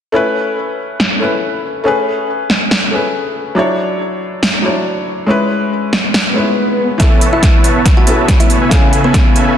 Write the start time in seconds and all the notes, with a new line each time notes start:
0.12 A3 C#4 E4 B4
1.00 snare
1.19 A3 C#4 E4 B4
1.84 A3 C#4 G#4 B4
2.50 snare
2.71 snare
2.91 A3 C#4 G#4
2.95 B4
3.55 F#3 D4 E4
3.59 C#5
4.43 snare
4.62 F#3 D4 E4
4.66 C#5
5.26 G#3 C#4 E4 B4
5.93 snare
6.14 snare, swell
6.34 G#3 C#4 E4 B4
6.98 C#3 E3 A3 B3 C#4 E4 A4 B4 C#5 E5 A5, kick, snare, closed hi-hat
7.21 closed hi-hat
7.33 B3 E4 B4 C#5 E5 A5
7.43 kick, snare, closed hi-hat
7.64 B3 B4 C#5 E5 A5, closed hi-hat
7.76 B3 B4 C#5 E5 A5
7.86 kick, snare, closed hi-hat
7.97 B3 F#4 B4 C#5 E5 F#5 A5
8.05 E3 B3 C#4 A4 B4 C#5 E5 A5, closed hi-hat
8.28 kick, snare, closed hi-hat
8.40 E4 E5, closed hi-hat
8.50 closed hi-hat
8.61 B3 B4 C#5 E5 G#5
8.69 C#3 A3 B3 C#4 A4 C#5 G#5, kick, snare, closed hi-hat
8.73 G#4
8.93 closed hi-hat
9.04 B3 C#4 A4 B4 E5 G#5
9.14 kick, snare, closed hi-hat
9.36 C#4 A4 B4 E5 G#5, closed hi-hat
9.47 C#4 A4 B4 E5 G#5